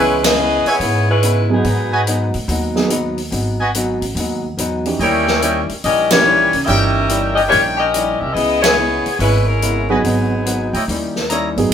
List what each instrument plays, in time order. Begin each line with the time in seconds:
Already playing: upright bass C#2, hollow-body jazz guitar C#3 G#3, grand piano E3 B3 C#4 G#4, trumpet section E4 B4 C#5 G#5, saxophone section B4
0.00 saxophone section G#3 C#4 E4, hollow-body jazz guitar B3 E4
0.24 saxophone section C#4 G#4 B4 D#5, snare, ride
0.38 hollow-body jazz guitar C#3 G#3 B3 E4
0.65 saxophone section B3 E4 G#4 C#5, trumpet section E4 B4 C#5 G#5, muted upright bass stroke, open hi-hat
0.79 upright bass G#2, hollow-body jazz guitar C#3 G#3 B3 E4, open hi-hat
1.10 saxophone section G#3 C#4 E4 B4
1.23 hollow-body jazz guitar C#3 G#3 B3 E4, closed hi-hat
1.50 grand piano F#3 B3 D#4 G#4, saxophone section D#4
1.54 saxophone section F#3 B3 G#4
1.63 hollow-body jazz guitar G#2 F#3 B3 D#4, upright bass G#2, open hi-hat
1.92 trumpet section F#4 B4 D#5 G#5
2.06 hollow-body jazz guitar G#2 F#3 B3 D#4, closed hi-hat
2.34 upright bass A2, open hi-hat
2.48 upright bass D#2, hollow-body jazz guitar G#2 F#3 B3 D#4, open hi-hat
2.76 grand piano F#3 B3 D#4 G#4, snare
2.89 hollow-body jazz guitar G#2 F#3 B3 D#4, closed hi-hat
3.18 open hi-hat
3.31 upright bass G#1, hollow-body jazz guitar G#2 F#3 B3 D#4, open hi-hat
3.60 trumpet section F#4 B4 D#5 G#5
3.75 hollow-body jazz guitar G#2 F#3 B3 D#4, closed hi-hat
4.01 upright bass A1, open hi-hat
4.15 upright bass D#2, hollow-body jazz guitar G#2 F#3 B3, open hi-hat
4.19 hollow-body jazz guitar D#4
4.57 upright bass E2, hollow-body jazz guitar G#2 F#3 B3 D#4, closed hi-hat
4.86 grand piano E3 C#4 D#4 G4, open hi-hat
4.99 upright bass D#2, hollow-body jazz guitar D#3 G3 C#4, saxophone section G3 C#4 E4 A#4, trumpet section E4 C#5 D#5 G5, open hi-hat
5.03 hollow-body jazz guitar E4
5.28 snare
5.42 hollow-body jazz guitar D#3 G3 C#4 E4, trumpet section E4 C#5 D#5 G5, closed hi-hat
5.69 muted upright bass stroke, open hi-hat
5.84 upright bass A#1, hollow-body jazz guitar D#3 G3 C#4 E4, saxophone section C#4 G4 A#4 D#5, open hi-hat
6.11 grand piano D#3 E3 C#4 G4, saxophone section A#3 E4 G4 C#5, snare, ride
6.26 hollow-body jazz guitar D#3 G3 C#4 E4
6.53 upright bass C#2, open hi-hat
6.65 upright bass G1, hollow-body jazz guitar D#3 G3 C#4, grand piano E3 C#4 D#4, saxophone section C#4 G4 A#4 D#5 E5, trumpet section D#4 C#5 G5, open hi-hat
6.69 hollow-body jazz guitar E4, grand piano G4
7.09 hollow-body jazz guitar D#3 G3 C#4 E4, closed hi-hat
7.35 saxophone section C#4 G4 A#4 D#5, open hi-hat
7.48 hollow-body jazz guitar D#3 G3, saxophone section A#3 E4 G4 C#5, open hi-hat
7.53 upright bass A#1, hollow-body jazz guitar C#4 E4
7.77 saxophone section C#4 G4 A#4 D#5
7.94 hollow-body jazz guitar D#3 G3 C#4 E4, closed hi-hat
8.19 upright bass C2, saxophone section C#4 G4 A#4 E5
8.33 upright bass C#2, hollow-body jazz guitar C#3, saxophone section B3 E4 G#4 D#5, open hi-hat
8.37 hollow-body jazz guitar G#3 B3 E4
8.61 saxophone section B3 E4 G#4 C#5, trumpet section E4 B4 C#5 G#5, snare, ride
8.78 hollow-body jazz guitar C#3 G#3 B3 E4
9.06 muted upright bass stroke, open hi-hat
9.19 upright bass G#1, hollow-body jazz guitar C#3 G#3 B3 E4, saxophone section G#3 C#4 E4 B4, open hi-hat
9.46 saxophone section G#3 C#4 E4 A#4
9.62 hollow-body jazz guitar C#3 G#3 B3 E4, closed hi-hat
9.89 saxophone section F#3 B3 D#4 G#4, grand piano F#3 B3 D#4 G#4, trumpet section F#4 B4 D#5 G#5
10.04 upright bass G#1, hollow-body jazz guitar G#2 F#3 B3 D#4, open hi-hat
10.46 hollow-body jazz guitar G#2 F#3 B3 D#4, closed hi-hat
10.73 upright bass D2, trumpet section E4 C#5 D#5 G5, open hi-hat
10.88 upright bass D#2, hollow-body jazz guitar D#3 G3 C#4 E4, open hi-hat
11.16 snare
11.30 hollow-body jazz guitar D#3 G3 C#4 E4, trumpet section E4 C#5 D#5 A#5, closed hi-hat
11.56 upright bass G1, grand piano F#3 B3 D#4 G#4, open hi-hat
11.70 upright bass G#1